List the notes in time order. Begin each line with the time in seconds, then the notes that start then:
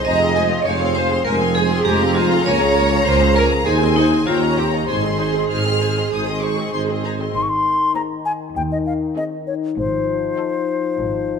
0.04 F1 F2 G#3 C5 D#5 G#5 A#5
0.19 C4 G#4 F5 C6
0.34 G#3 C5 G#5
0.49 C4 G#4 F5 C6
0.64 F1 F2 G#3 C5 C#5 F5 G#5
0.80 C4 G#4 F5 C6
0.95 G#3 C5 G#5
1.11 C4 G#4 F5 C6
1.25 F1 F2 G#3 A#4 C5 G#5
1.40 C4 G#4 F5 C6
1.55 G#3 G#4 C5 G#5
1.70 C4 G#4 F5 C6
1.85 F1 F2 G#3 G4 C5 G#5 A#5
2.00 C4 G#4 F5 C6
2.15 G#3 F4 C5 G#5
2.30 C4 G#4 F5 C6
2.45 C#2 A#3 A#4 C#5 G#5
2.61 C#4 G#4 F5 A#5
2.75 A#3 A#4 C#5 G#5
2.90 C#4 G#4 F5 A#5
3.06 C#2 A#3 A#4 C5 C#5 G#5
3.21 C#4 G#4 F5 A#5
3.36 A#3 A#4 C#5 G#5
3.51 C#4 G#4 F5 A#5
3.65 D#2 D#4 G#4 C5 G#5
3.81 C4 G#4 D#5 C6
3.96 D#4 C5 G#5
4.11 C4 G#4 D#5 C6
4.26 D#2 C4 F4 C5 C#5 G5 A#5
4.41 C#4 C#5 D#5 F5
4.57 C4 G4 C5 C#5 G5
4.72 C#4 C#5 D#5 F5
4.87 G#1 D#4 G#4 C5 G#5 C6
5.03 C4 G#4 D#5 C6
5.19 D#4 C5 G#5
5.34 C4 G#4 D#5 C6
5.50 G#1 D#4 C5 G#5 F6
5.65 C4 G#4 D#5 C6
5.81 D#4 C5 G#5
5.96 C4 G#4 D#5 C6
6.12 G#1 D#4 C5 G#5 D#6
6.27 C4 G#4 D#5 C6
6.42 D#4 C5 G#5 C#6
6.58 C4 G#4 D#5 C6
6.73 G#1 D#4 C5 G#5 C6
6.88 C4 G#4 D#5 C6
7.03 D#4 C5 G#5 A#5
7.19 C4 G#4 D#5 C6
7.35 G#1 G#2 D#3 D#4 C6
7.42 C#6
7.49 C6
7.95 C4 D#4 G#4 A#5
8.25 G#5
8.56 D#2 G5
8.72 D#5
8.86 F5
9.16 C4 D#4 G#4 D#5
9.47 C#5
9.77 G#1 G#2 F3 C5
10.37 D#4 F4 A4
10.97 G#1 G#2